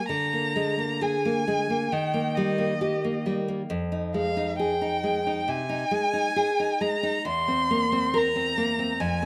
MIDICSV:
0, 0, Header, 1, 3, 480
1, 0, Start_track
1, 0, Tempo, 927357
1, 52, Time_signature, 4, 2, 24, 8
1, 532, Tempo, 892857
1, 2932, Tempo, 886263
1, 4372, Tempo, 854701
1, 4992, End_track
2, 0, Start_track
2, 0, Title_t, "Violin"
2, 0, Program_c, 0, 40
2, 48, Note_on_c, 0, 82, 65
2, 532, Note_on_c, 0, 80, 62
2, 540, Note_off_c, 0, 82, 0
2, 1014, Note_on_c, 0, 79, 60
2, 1022, Note_off_c, 0, 80, 0
2, 1246, Note_on_c, 0, 75, 57
2, 1254, Note_off_c, 0, 79, 0
2, 1730, Note_off_c, 0, 75, 0
2, 2215, Note_on_c, 0, 77, 65
2, 2438, Note_off_c, 0, 77, 0
2, 2449, Note_on_c, 0, 79, 67
2, 2934, Note_on_c, 0, 80, 76
2, 2942, Note_off_c, 0, 79, 0
2, 3648, Note_on_c, 0, 82, 67
2, 3656, Note_off_c, 0, 80, 0
2, 3891, Note_off_c, 0, 82, 0
2, 3899, Note_on_c, 0, 84, 82
2, 4385, Note_on_c, 0, 82, 79
2, 4394, Note_off_c, 0, 84, 0
2, 4850, Note_on_c, 0, 80, 71
2, 4858, Note_off_c, 0, 82, 0
2, 4992, Note_off_c, 0, 80, 0
2, 4992, End_track
3, 0, Start_track
3, 0, Title_t, "Nylon-string guitar"
3, 0, Program_c, 1, 24
3, 0, Note_on_c, 1, 58, 34
3, 47, Note_on_c, 1, 50, 50
3, 52, Note_off_c, 1, 58, 0
3, 171, Note_on_c, 1, 58, 39
3, 286, Note_off_c, 1, 58, 0
3, 288, Note_on_c, 1, 56, 43
3, 405, Note_off_c, 1, 56, 0
3, 407, Note_on_c, 1, 58, 41
3, 525, Note_on_c, 1, 68, 48
3, 602, Note_off_c, 1, 58, 0
3, 653, Note_on_c, 1, 58, 44
3, 723, Note_off_c, 1, 68, 0
3, 770, Note_off_c, 1, 58, 0
3, 772, Note_on_c, 1, 56, 40
3, 891, Note_off_c, 1, 56, 0
3, 893, Note_on_c, 1, 58, 42
3, 988, Note_off_c, 1, 50, 0
3, 1012, Note_off_c, 1, 58, 0
3, 1013, Note_on_c, 1, 51, 49
3, 1128, Note_on_c, 1, 58, 41
3, 1254, Note_on_c, 1, 55, 47
3, 1321, Note_off_c, 1, 58, 0
3, 1367, Note_on_c, 1, 58, 37
3, 1445, Note_off_c, 1, 55, 0
3, 1490, Note_on_c, 1, 67, 43
3, 1562, Note_off_c, 1, 58, 0
3, 1616, Note_on_c, 1, 58, 38
3, 1684, Note_off_c, 1, 67, 0
3, 1731, Note_on_c, 1, 55, 36
3, 1806, Note_off_c, 1, 58, 0
3, 1852, Note_on_c, 1, 58, 40
3, 1922, Note_off_c, 1, 55, 0
3, 1949, Note_off_c, 1, 51, 0
3, 1968, Note_on_c, 1, 41, 57
3, 1971, Note_off_c, 1, 58, 0
3, 2086, Note_on_c, 1, 63, 41
3, 2207, Note_on_c, 1, 56, 43
3, 2281, Note_off_c, 1, 63, 0
3, 2327, Note_on_c, 1, 63, 41
3, 2402, Note_off_c, 1, 56, 0
3, 2449, Note_on_c, 1, 68, 47
3, 2524, Note_off_c, 1, 63, 0
3, 2568, Note_on_c, 1, 63, 40
3, 2645, Note_off_c, 1, 68, 0
3, 2686, Note_on_c, 1, 56, 40
3, 2764, Note_off_c, 1, 63, 0
3, 2811, Note_on_c, 1, 63, 43
3, 2881, Note_off_c, 1, 56, 0
3, 2910, Note_off_c, 1, 41, 0
3, 2924, Note_on_c, 1, 48, 44
3, 3002, Note_off_c, 1, 63, 0
3, 3041, Note_on_c, 1, 63, 42
3, 3117, Note_off_c, 1, 48, 0
3, 3159, Note_on_c, 1, 56, 48
3, 3234, Note_off_c, 1, 63, 0
3, 3279, Note_on_c, 1, 63, 41
3, 3353, Note_off_c, 1, 56, 0
3, 3404, Note_on_c, 1, 68, 48
3, 3473, Note_off_c, 1, 63, 0
3, 3530, Note_on_c, 1, 63, 43
3, 3597, Note_off_c, 1, 68, 0
3, 3644, Note_on_c, 1, 56, 44
3, 3722, Note_off_c, 1, 63, 0
3, 3765, Note_on_c, 1, 63, 45
3, 3840, Note_off_c, 1, 56, 0
3, 3884, Note_on_c, 1, 40, 57
3, 3889, Note_off_c, 1, 63, 0
3, 4008, Note_on_c, 1, 60, 42
3, 4130, Note_on_c, 1, 58, 49
3, 4204, Note_off_c, 1, 60, 0
3, 4248, Note_on_c, 1, 60, 51
3, 4323, Note_off_c, 1, 58, 0
3, 4365, Note_on_c, 1, 70, 54
3, 4442, Note_off_c, 1, 60, 0
3, 4487, Note_on_c, 1, 60, 46
3, 4562, Note_off_c, 1, 70, 0
3, 4610, Note_on_c, 1, 58, 50
3, 4682, Note_off_c, 1, 60, 0
3, 4730, Note_on_c, 1, 60, 45
3, 4802, Note_off_c, 1, 58, 0
3, 4826, Note_off_c, 1, 40, 0
3, 4849, Note_on_c, 1, 41, 57
3, 4851, Note_off_c, 1, 60, 0
3, 4974, Note_on_c, 1, 60, 50
3, 4992, Note_off_c, 1, 41, 0
3, 4992, Note_off_c, 1, 60, 0
3, 4992, End_track
0, 0, End_of_file